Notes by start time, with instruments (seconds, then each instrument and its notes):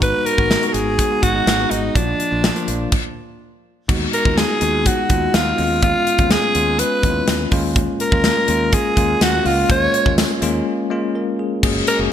Already playing: fretless electric bass G#1, tine electric piano G#3 B3 D#4 F#4
0.02 alto saxophone B4, kick, closed hi-hat
0.26 alto saxophone A#4, closed hi-hat
0.37 fretless electric bass G#1, tine electric piano G#3 B3 D#4 F#4, kick
0.51 snare, closed hi-hat
0.62 tine electric piano G#3 B3 D#4 F#4, closed hi-hat
0.68 alto saxophone A#4
0.74 fretless electric bass G#1, alto saxophone G#4, closed hi-hat
0.99 kick, closed hi-hat
1.10 tine electric piano G#3 B3 D#4 F#4
1.22 fretless electric bass G#1, alto saxophone F#4, kick, closed hi-hat
1.34 tine electric piano G#3 B3 D#4 G#4
1.47 fretless electric bass G#1, snare, closed hi-hat
1.59 tine electric piano G#3 B3 D#4 F#4
1.71 fretless electric bass G#1, alto saxophone D#4, closed hi-hat
1.95 fretless electric bass A#1, tine electric piano F3 A#3 D4 F4, alto saxophone D4, kick, closed hi-hat
2.20 closed hi-hat
2.31 fretless electric bass A#1, tine electric piano F3 A#3 D4 F4
2.44 snare, closed hi-hat
2.55 tine electric piano F3 A#3 D4 F4, closed hi-hat
2.68 fretless electric bass A#1, closed hi-hat
2.92 kick, crash
3.88 fretless electric bass D#2, tine electric piano G#3 B3 D#4 F#4, kick, crash
4.13 alto saxophone A#4, closed hi-hat
4.25 fretless electric bass D#2, tine electric piano G#3 B3 D#4 F4, kick
4.38 alto saxophone G#4, snare, closed hi-hat
4.61 fretless electric bass D#2, tine electric piano G#3 B3 D#4 F#4, closed hi-hat
4.86 alto saxophone F#4, kick, closed hi-hat
5.09 fretless electric bass D#2, tine electric piano G#3 B3 D#4 F4, kick, closed hi-hat
5.34 fretless electric bass D#2, alto saxophone F4, snare, closed hi-hat
5.58 fretless electric bass D#2, tine electric piano G#3 B3 C#4 E4, open hi-hat
5.64 tine electric piano F4
5.82 alto saxophone F4, kick, closed hi-hat
6.07 closed hi-hat
6.18 fretless electric bass D#2, tine electric piano G#3 B3 C#4 F4, kick, closed hi-hat
6.31 alto saxophone G#4, snare, closed hi-hat
6.54 fretless electric bass D#2, tine electric piano G#3 B3 C#4 F4, closed hi-hat
6.79 alto saxophone B4, closed hi-hat
7.02 fretless electric bass D#2, tine electric piano G#3 B3 C#4 E4, kick, closed hi-hat
7.10 tine electric piano F4
7.28 fretless electric bass D#2, snare, closed hi-hat
7.51 fretless electric bass D#2, tine electric piano G#3 A#3 C#4 F4, kick, open hi-hat
7.76 kick, closed hi-hat
8.00 alto saxophone A#4, closed hi-hat
8.12 fretless electric bass D#2, tine electric piano G#3 A#3 C#4 F4, kick
8.24 snare, closed hi-hat
8.48 fretless electric bass D#2, tine electric piano G#3 A#3 C#4 F4, closed hi-hat
8.73 alto saxophone G#4, kick, closed hi-hat
8.96 fretless electric bass D#2, tine electric piano G#3 A#3 C#4 F4, kick, closed hi-hat
9.21 fretless electric bass D#2, alto saxophone F#4, snare, closed hi-hat
9.45 fretless electric bass C#2, tine electric piano G#3 A#3 C#4 F4, alto saxophone F4, open hi-hat
9.69 fretless electric bass D#2, tine electric piano G#3 A#3 C#4 F4, alto saxophone C#5, kick, closed hi-hat
9.94 closed hi-hat
10.06 fretless electric bass D#2, tine electric piano G#3 A#3 C#4 F4, kick
10.18 snare, closed hi-hat, tambourine
10.42 fretless electric bass D#2, tine electric piano G#3 A#3 C#4 F4, closed hi-hat
10.90 tine electric piano G#3 A#3 C#4 F4
11.15 tine electric piano C#4 A#4
11.39 tine electric piano G#4
11.63 fretless electric bass F#1, tine electric piano G#3 A#3 C#4 F#4 G#4, kick, crash
11.87 alto saxophone A#4, closed hi-hat
11.99 fretless electric bass F#1, tine electric piano G#3 A#3 C#4 F#4 G#4